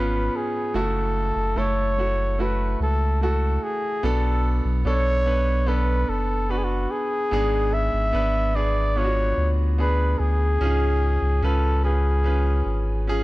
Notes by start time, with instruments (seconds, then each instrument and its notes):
Already playing: sub bass G#1, grand piano G#2 B3 C#4 F4, flugelhorn B4
0.36 flugelhorn G#4
0.74 sub bass F#1, grand piano C#3 A3 E4 F#4, flugelhorn A4
1.36 sub bass F#1
1.56 sub bass F#1, grand piano A3 E4 A4, flugelhorn C#5
1.98 grand piano A3 E4 F#4
2.38 grand piano A3 E4 F#4, flugelhorn B4
2.80 sub bass C#2, flugelhorn A4
3.21 grand piano A3 E4 F#4, flugelhorn A4
3.63 flugelhorn G#4
4.03 sub bass B1, grand piano B2 F#3 B3 D4 A4, flugelhorn A4
4.65 sub bass B1
4.85 sub bass B1, grand piano B3 D4 A4, flugelhorn C#5
5.26 grand piano B3 D4 B4
5.66 grand piano B3 D4 A4, flugelhorn B4
6.09 sub bass F#1, flugelhorn A4
6.49 grand piano B3 D4 B4, flugelhorn F#4
6.57 flugelhorn G#4
6.64 flugelhorn F#4
6.91 flugelhorn G#4
7.31 sub bass G#1, grand piano G#2 G#3 B3 D4 G#4
7.73 flugelhorn E5
7.93 sub bass G#1
8.13 sub bass G#1, grand piano B3 D4 B4
8.55 grand piano B3 D4 G#4, flugelhorn D5
8.96 grand piano B3 D4 F4, flugelhorn C#5
9.04 grand piano F#4
9.37 sub bass D2
9.78 grand piano B3 D4 G#4, flugelhorn B4
10.19 sub bass D2, flugelhorn G#4
10.61 sub bass C#2, grand piano G#2 C#4 F4 G#4
11.22 sub bass C#2
11.43 sub bass C#2, grand piano C#4 F4 B4, flugelhorn A4
11.84 grand piano C#4 F4 B4, flugelhorn G#4
12.24 grand piano C#4 F4 B4
12.66 sub bass G#1
13.07 grand piano C#4 F4 G#4